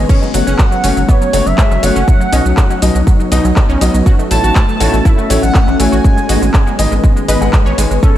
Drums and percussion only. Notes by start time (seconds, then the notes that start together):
0.09 kick, crash, cabasa
0.23 cabasa
0.34 open hi-hat, cabasa
0.47 cabasa
0.59 kick, clap, cabasa
0.72 cabasa
0.84 open hi-hat, cabasa
0.97 cabasa
1.09 kick, cabasa
1.22 cabasa
1.33 open hi-hat, cabasa
1.47 cabasa
1.58 kick, clap, cabasa
1.71 clap, cabasa
1.83 open hi-hat, cabasa
1.96 cabasa
2.08 kick, cabasa
2.21 cabasa
2.33 open hi-hat, cabasa
2.46 cabasa
2.57 kick, clap, cabasa
2.71 cabasa
2.82 open hi-hat, cabasa
2.95 cabasa
3.07 kick, cabasa
3.20 cabasa
3.32 open hi-hat, cabasa
3.44 clap, cabasa
3.56 kick, clap, cabasa
3.70 cabasa
3.81 open hi-hat, cabasa
3.95 cabasa
4.06 kick, cabasa
4.19 cabasa
4.31 open hi-hat, cabasa
4.44 cabasa
4.55 kick, clap, cabasa
4.69 cabasa
4.80 open hi-hat, cabasa
4.94 cabasa
5.05 kick, cabasa
5.19 cabasa
5.30 open hi-hat, cabasa
5.43 cabasa
5.54 kick, clap, cabasa
5.67 clap, cabasa
5.80 open hi-hat, cabasa
5.93 cabasa
6.04 kick, cabasa
6.18 cabasa
6.29 open hi-hat, cabasa
6.43 cabasa
6.54 kick, clap, cabasa
6.67 cabasa
6.79 open hi-hat, cabasa
6.92 cabasa
7.04 kick, cabasa
7.17 cabasa
7.28 open hi-hat, cabasa
7.41 clap, cabasa
7.53 kick, clap, cabasa
7.67 cabasa
7.78 open hi-hat, cabasa
7.91 cabasa
8.03 kick, cabasa